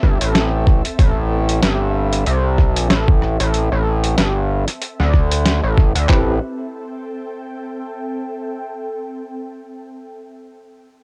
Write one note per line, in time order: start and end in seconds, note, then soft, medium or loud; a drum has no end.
0.00 0.18 G1 loud
0.00 6.08 C4 medium
0.00 6.09 A4 medium
0.00 6.13 E5 medium
0.00 kick medium
0.00 cross-stick soft
0.21 0.82 A1 loud
0.21 closed hi-hat medium
0.35 snare loud
0.35 closed hi-hat soft
0.67 kick loud
0.67 cross-stick soft
0.85 closed hi-hat medium
0.99 1.60 A1 loud
0.99 kick loud
0.99 closed hi-hat medium
1.49 closed hi-hat medium
1.62 2.24 G1 loud
1.62 snare loud
1.62 closed hi-hat medium
2.13 closed hi-hat medium
2.26 2.71 C2 medium
2.26 closed hi-hat medium
2.58 kick medium
2.58 cross-stick soft
2.71 2.88 B1 medium
2.76 closed hi-hat medium
2.90 3.38 A1 medium
2.90 snare loud
2.90 closed hi-hat soft
3.08 kick loud
3.22 cross-stick soft
3.40 3.69 A1 loud
3.40 closed hi-hat medium
3.54 closed hi-hat medium
3.72 4.16 A1 loud
4.04 closed hi-hat medium
4.18 4.65 G1 loud
4.18 snare loud
4.18 closed hi-hat medium
4.68 cross-stick soft
4.68 closed hi-hat medium
4.82 closed hi-hat medium
5.00 5.61 D2 loud
5.00 snare soft
5.14 kick medium
5.14 cross-stick soft
5.31 closed hi-hat medium
5.46 snare loud
5.46 closed hi-hat medium
5.63 5.93 A1 medium
5.78 kick medium
5.78 cross-stick soft
5.95 6.07 D2 loud
5.95 closed hi-hat medium
6.09 6.39 A1 loud
6.09 8.61 C4 medium
6.09 6.34 C4 medium
6.09 6.34 E4 medium
6.09 6.34 G4 medium
6.09 6.34 B4 medium
6.09 kick loud
6.09 clap medium
6.20 8.61 A4 medium
6.30 8.61 G5 medium